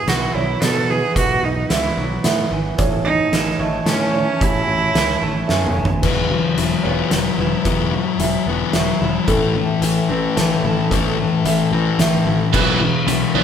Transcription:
Already playing: B2 E3 G#4 B4 F#5
0.07 B1 E4 F#4, snare, closed hi-hat
0.34 B1 F#3 E4 C#5
0.61 B2 B3 A4, snare, closed hi-hat
0.87 E3 G#4 B4
1.15 B1 B2 F#4, kick, closed hi-hat
1.43 B1 D#4
1.70 C#2 E4 E5, snare, closed hi-hat
1.97 B1 F#3
2.24 A2 B3 E5, snare, closed hi-hat
2.51 G#1 E3
2.78 A1 A2 C#5 A5, kick, closed hi-hat
3.04 D#4
3.32 A1 E4, snare, closed hi-hat
3.59 A1 A3 D#5
3.86 A2 C#4, snare, closed hi-hat
4.14 E3 C#5
4.41 A1 A2 E4, kick, closed hi-hat
4.68 A1
4.95 C#2 E4 E5, snare, closed hi-hat
5.22 A1 A3
5.48 F#2 C#4 E5, snare
5.67 mid tom
5.77 F#1 E3
5.85 floor tom
6.02 E1 E3 F#3 B3 F#4 B4 E5 B5, kick, crash
6.31 E3 F#3
6.57 E1 E3 F#3, closed hi-hat
6.84 E1 E3 F#3 B3 C#5
7.11 E1 E3 F#3, snare, closed hi-hat
7.38 E1 E3 F#3 E4 B4
7.65 E1 E3 F#3 B3, kick, closed hi-hat
7.92 E3 F#3
8.19 E1 E3 F#3 E5, closed hi-hat
8.46 E1 E3 F#3 B3
8.73 E1 E3 F#3 E5, snare, closed hi-hat
9.01 E1 E3 F#3 E4
9.28 A1 A2 E3 A3 A4 A5, kick, closed hi-hat
9.55 A2 E3 A3
9.81 A1 A2 E3, closed hi-hat
10.08 A1 A2 E3 A3 C4 B4
10.36 A1 A2 E3 A3, snare, closed hi-hat
10.63 A1 A2 E3 E4 A4
10.90 A1 A2 E3 A3, kick, closed hi-hat
11.18 A2 E3 A3
11.45 A1 A2 E3 E5, closed hi-hat
11.71 A1 A2 E3 A3 C4
11.99 A1 A2 E3 A3 E5, snare, closed hi-hat
12.26 A1 A2 E3 E4
12.53 B1 B2 E3 F#3 F#4 B4 B5, kick, crash
12.80 B2 E3 F#3
13.06 B1 B2 E3, closed hi-hat
13.34 B1 B2 E3 F#3 B3 C#5

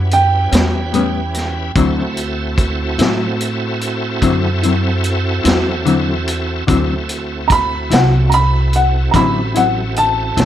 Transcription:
Already playing: F#2 C#4 E4 G4 B4 F#5
0.11 G5, closed hi-hat
0.52 E2 G3 B3 C#4, snare, closed hi-hat
0.93 A2 G3 B3 C#4, closed hi-hat
1.34 snare, closed hi-hat
1.75 D2 D3 F#3 C4 E4 F#4 A4, kick, closed hi-hat
2.17 closed hi-hat
2.58 kick, closed hi-hat
2.98 A2 C4 E4, snare, closed hi-hat
3.02 F#3
3.41 closed hi-hat
3.81 closed hi-hat
4.22 F#2 D3 F#3 C4 E4, kick, closed hi-hat
4.63 F#3 C4 E4, closed hi-hat
5.04 closed hi-hat
5.44 E2 F#3 C4 E4, snare, closed hi-hat
5.86 D3 F#3 C4 E4, closed hi-hat
6.28 closed hi-hat
6.67 D2 D3 F#3 C4 E4 F#4 A4, kick, closed hi-hat
7.09 closed hi-hat
7.48 A#5, kick, closed hi-hat
7.52 B5
7.90 C2 F#3 C4 E4 F#5, snare, closed hi-hat
8.30 A#5, closed hi-hat
8.34 B5
8.73 F#5, closed hi-hat
9.11 A1 D3 F#3 A#5, kick, closed hi-hat
9.15 C4 E4 B5
9.55 F#3 C4 E4 F#5, closed hi-hat
9.96 A5, closed hi-hat
10.37 B1 F#3 C4 E4, snare, closed hi-hat

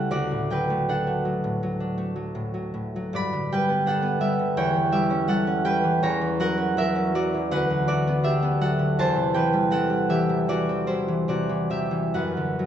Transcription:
Already playing: C#2 C#3 G3 A3 E4 G4 A4 B4 C#5 E5 F#5 G5 A5
0.11 D2 F#4 D5
0.31 A2
0.50 F#3 B4 G5
0.70 A3
0.89 D4 A4 F#5
1.07 A3
1.25 F#3
1.44 A2
1.63 F#3
1.80 D4
1.98 A3
2.16 F#3
2.35 A2
2.54 F#3
2.74 A2
2.96 F#3
3.13 G2 D5 B5
3.33 D3
3.52 G3 B4 G5
3.69 B3
3.86 D4 A4 F#5
4.02 B3
4.20 G3 G4 E5
4.39 D3
4.57 E2 C#5 G5
4.73 E3
4.92 G3 G4 E5
5.10 C#4
5.28 G3 A4 F#5
5.47 C#4
5.64 G3 B4 G5
5.84 E3
6.03 E2 C#5 A#5
6.21 E3
6.40 F#3 A#4 F#5
6.57 C#4
6.77 F#3 A#4 E5
6.95 C#4
7.15 F#3 F#4 D5
7.34 E3
7.51 D2 B4 F#5
7.70 D3
7.88 F#3 F#4 D5
8.07 B3
8.23 D4 G4 E5
8.42 B3
8.61 F#3 A4 F#5
8.79 D3
8.99 E2 C5 A5
9.16 C3
9.34 E3 B4 G5
9.53 G3
9.71 C4 A4 F#5
9.90 G3
10.09 E3 G4 E5
10.29 C3
10.48 E3 F#4 D5
10.69 C4
10.87 G3 E4 C5
11.08 E3
11.28 C3 F#4 D5
11.49 E3
11.70 C3 G4 E5
11.91 E3
12.14 F#2 B4 F#5
12.37 D3
12.59 F#3

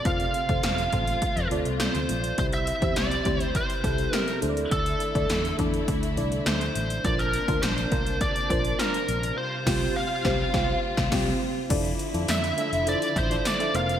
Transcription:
Already playing: C3
0.05 F1 A3 C4 F4 A4 C5 F5, kick, closed hi-hat
0.20 closed hi-hat
0.34 closed hi-hat
0.49 F1 C4 F4 A4 C5, kick, closed hi-hat
0.63 F1 F5, snare, closed hi-hat
0.78 closed hi-hat
0.92 A1 C4 F4 A4 C5, kick, closed hi-hat
1.07 closed hi-hat
1.22 kick, closed hi-hat
1.36 F2, closed hi-hat
1.50 D2 C4 F4 A4 D5, closed hi-hat
1.65 C2, closed hi-hat
1.80 C4 F4 A4 C5 D5, snare, closed hi-hat
1.95 D2, closed hi-hat
2.09 A#1, closed hi-hat
2.24 closed hi-hat
2.38 C2 C3 G3 C4 E4 G4 C5, kick, closed hi-hat
2.53 E5, closed hi-hat
2.67 closed hi-hat
2.81 E2 C4 E4 G4 C5, kick, closed hi-hat
2.96 C2 D5, snare, closed hi-hat
3.11 closed hi-hat
3.25 D2 C4 E4 G4 C5, kick, closed hi-hat
3.40 C5, closed hi-hat
3.55 C5, kick, closed hi-hat
3.70 closed hi-hat
3.83 C2 C4 E4 G4 A4, kick, closed hi-hat
3.98 closed hi-hat
4.13 C4 E4 G4 A#4 C5, snare, closed hi-hat
4.28 closed hi-hat
4.42 D2 D3 A3 D4 E4 A4 C5, closed hi-hat
4.49 D5
4.57 closed hi-hat
4.71 D2 A4, kick, closed hi-hat
4.86 closed hi-hat
5.00 closed hi-hat
5.14 D2 D4 E4 A4 D5, kick, closed hi-hat
5.30 E2, snare, closed hi-hat
5.45 closed hi-hat
5.58 E2 D4 E4 A4 D5, kick, closed hi-hat
5.74 closed hi-hat
5.88 D2, kick, closed hi-hat
6.03 closed hi-hat
6.17 C2 D4 E4 A4 D5, closed hi-hat
6.32 closed hi-hat
6.45 D2 D4 E4 A4 C5 D5, snare, closed hi-hat
6.61 closed hi-hat
6.75 A1, closed hi-hat
6.90 closed hi-hat
7.04 A#1 C3 A#3 D4 F4 A#4 C5 D5, kick, closed hi-hat
7.19 A#4, closed hi-hat
7.33 closed hi-hat
7.48 D2 D4 F4 A#4 C5, kick, closed hi-hat
7.63 A#1 C5, snare, closed hi-hat
7.78 closed hi-hat
7.91 C2 D4 F4 A#4 C5, kick, closed hi-hat
8.07 closed hi-hat
8.21 D5, kick, closed hi-hat
8.36 closed hi-hat
8.49 A#1 D4 F4 A#4 C5, kick, closed hi-hat
8.65 closed hi-hat
8.79 D4 F4 A#4 C5, snare, closed hi-hat
8.94 closed hi-hat
9.08 A#1, closed hi-hat
9.23 closed hi-hat
9.37 G3 F4 C5
9.66 C2 C4 F4 G4 C5, kick, snare, crash
9.96 F5
10.24 C2 C4 F4 G4 C5, kick, snare
10.53 C2 C4 F4 G4 C5, kick, snare
10.97 C2, kick, snare
11.11 C2 C4 F4 G4, kick, snare, crash
11.69 F1 D3 F3 D4 E4 F4 A4 D5, kick, closed hi-hat, crash
11.85 closed hi-hat
11.99 closed hi-hat
12.13 F2 D4 E4 F4 A4 D5, closed hi-hat
12.28 F2 E5, snare, closed hi-hat, tambourine
12.44 closed hi-hat
12.57 D4 E4 F4 A4 E5, closed hi-hat
12.72 F1, closed hi-hat
12.86 D4 E4 F4 A4 C5 D5, closed hi-hat
13.02 closed hi-hat
13.16 A1 C5, kick, closed hi-hat
13.30 D4 E4 F4 A4 D5, closed hi-hat
13.45 D5, snare, closed hi-hat, tambourine
13.59 D4 E4 F4 A4 E5, closed hi-hat
13.74 F1 C3 A#3 C4 F4 A#4 C5 F5, closed hi-hat
13.89 closed hi-hat

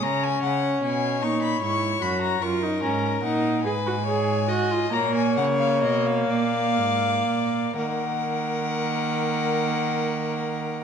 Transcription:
0.02 C#3 C#4 C#5 A#5
0.23 G#5
0.43 C#3 F#5
0.82 B2 G#5
1.22 A#2 D#4 C#6
1.42 B5
1.62 G#2 E4 C#6
2.01 F#2 F#4 B5
2.21 A#5
2.42 F#2 F4 A#4 C#6
2.63 D#4
2.82 G#2 C#4 A#5
3.23 A#2 D#4 F#5
3.64 G#2 G#4 B4 G#5
3.87 F#4
4.06 G#4 C#5
4.49 F#4 D#5
4.71 F4
4.92 A#2 A#3 C#5 A#5
5.15 G#5
5.37 C#3 F#5
5.59 F5
5.82 B2 D#5
6.06 F5
6.29 A#2 D5
6.77 G#2
7.27 A#2
7.77 D#3 A#3 A#4 F#5

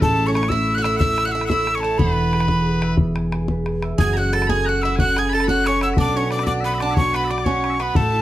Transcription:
Already playing: B3 C#4 E4
0.01 A1 A3 A4 A5, bodhran
0.19 E4
0.27 C#4 C#5 C#6
0.33 C#4 A4 C#5 C#6, bodhran
0.43 bodhran
0.49 E4 C#5 E5 E6, bodhran
0.70 A4
0.75 F#4 F#5 F#6
0.82 E4 E5 E6, bodhran
0.97 E4 E5 F#5 E6, bodhran
1.01 E4
1.18 bodhran
1.25 F#4 F#5 F#6
1.32 E4 A4 E5 E6
1.41 bodhran
1.45 F#5 E6
1.50 E4 C#5 E5, bodhran
1.67 A4, bodhran
1.75 C#4 C#5 C#6
1.80 E5 A5, bodhran
1.84 A3
1.98 E1 E3 B3 B4 B5, bodhran
2.18 B3
2.33 G#4, bodhran
2.40 bodhran
2.48 B4, bodhran
2.67 G#4
2.82 E5, bodhran
2.97 B3, bodhran
3.16 G#5, bodhran
3.32 G#4, bodhran
3.48 B4, bodhran
3.66 G#4, bodhran
3.82 E5, bodhran
3.98 F#1 F#3 G#4 G#5 G#6, bodhran
4.13 F#4 F#5 A#5
4.18 C#4 F#6
4.33 A4 A5 A6, bodhran
4.42 bodhran
4.47 G#4 G#5 B5 G#6, bodhran
4.51 C#5
4.65 A4 A#5 F#6
4.69 F#4 F#5
4.82 E4 E5 F#5 E6, bodhran
4.96 C#4 F#4 G#5 F#6, bodhran
5.00 F#5
5.17 G#4 G#5 A5 G#6, bodhran
5.29 B5 A6
5.33 A4 A5, bodhran
5.40 B5, bodhran
5.48 F#4 C#5 F#5 F#6, bodhran
5.64 C#4 A4 C#5 C#6, bodhran
5.81 E4 F#5 E6, bodhran
5.94 E5, bodhran
5.98 B1 B3 D4 D5 D6
6.16 C#4 F#4 C#5 C#6
6.31 D4 D5 D6, bodhran
6.39 bodhran
6.43 D4 D5 E5 F#5 D6, bodhran
6.61 B3 B4 E5
6.65 D5 B5
6.74 E5
6.78 D4 D5 F#5 D6, bodhran
6.91 C#5 E5
6.97 C#4 F#4 C#6, bodhran
7.13 B3 B4 F#5 B5, bodhran
7.24 D5 E5
7.30 D4 D5 D6, bodhran
7.38 bodhran
7.44 C#4 C#5 F#5 C#6, bodhran
7.64 D5, bodhran
7.70 E5
7.74 C#5
7.80 B3 B4 F#5 B5, bodhran
7.95 A1 A3 A4 A5, bodhran
8.14 E4

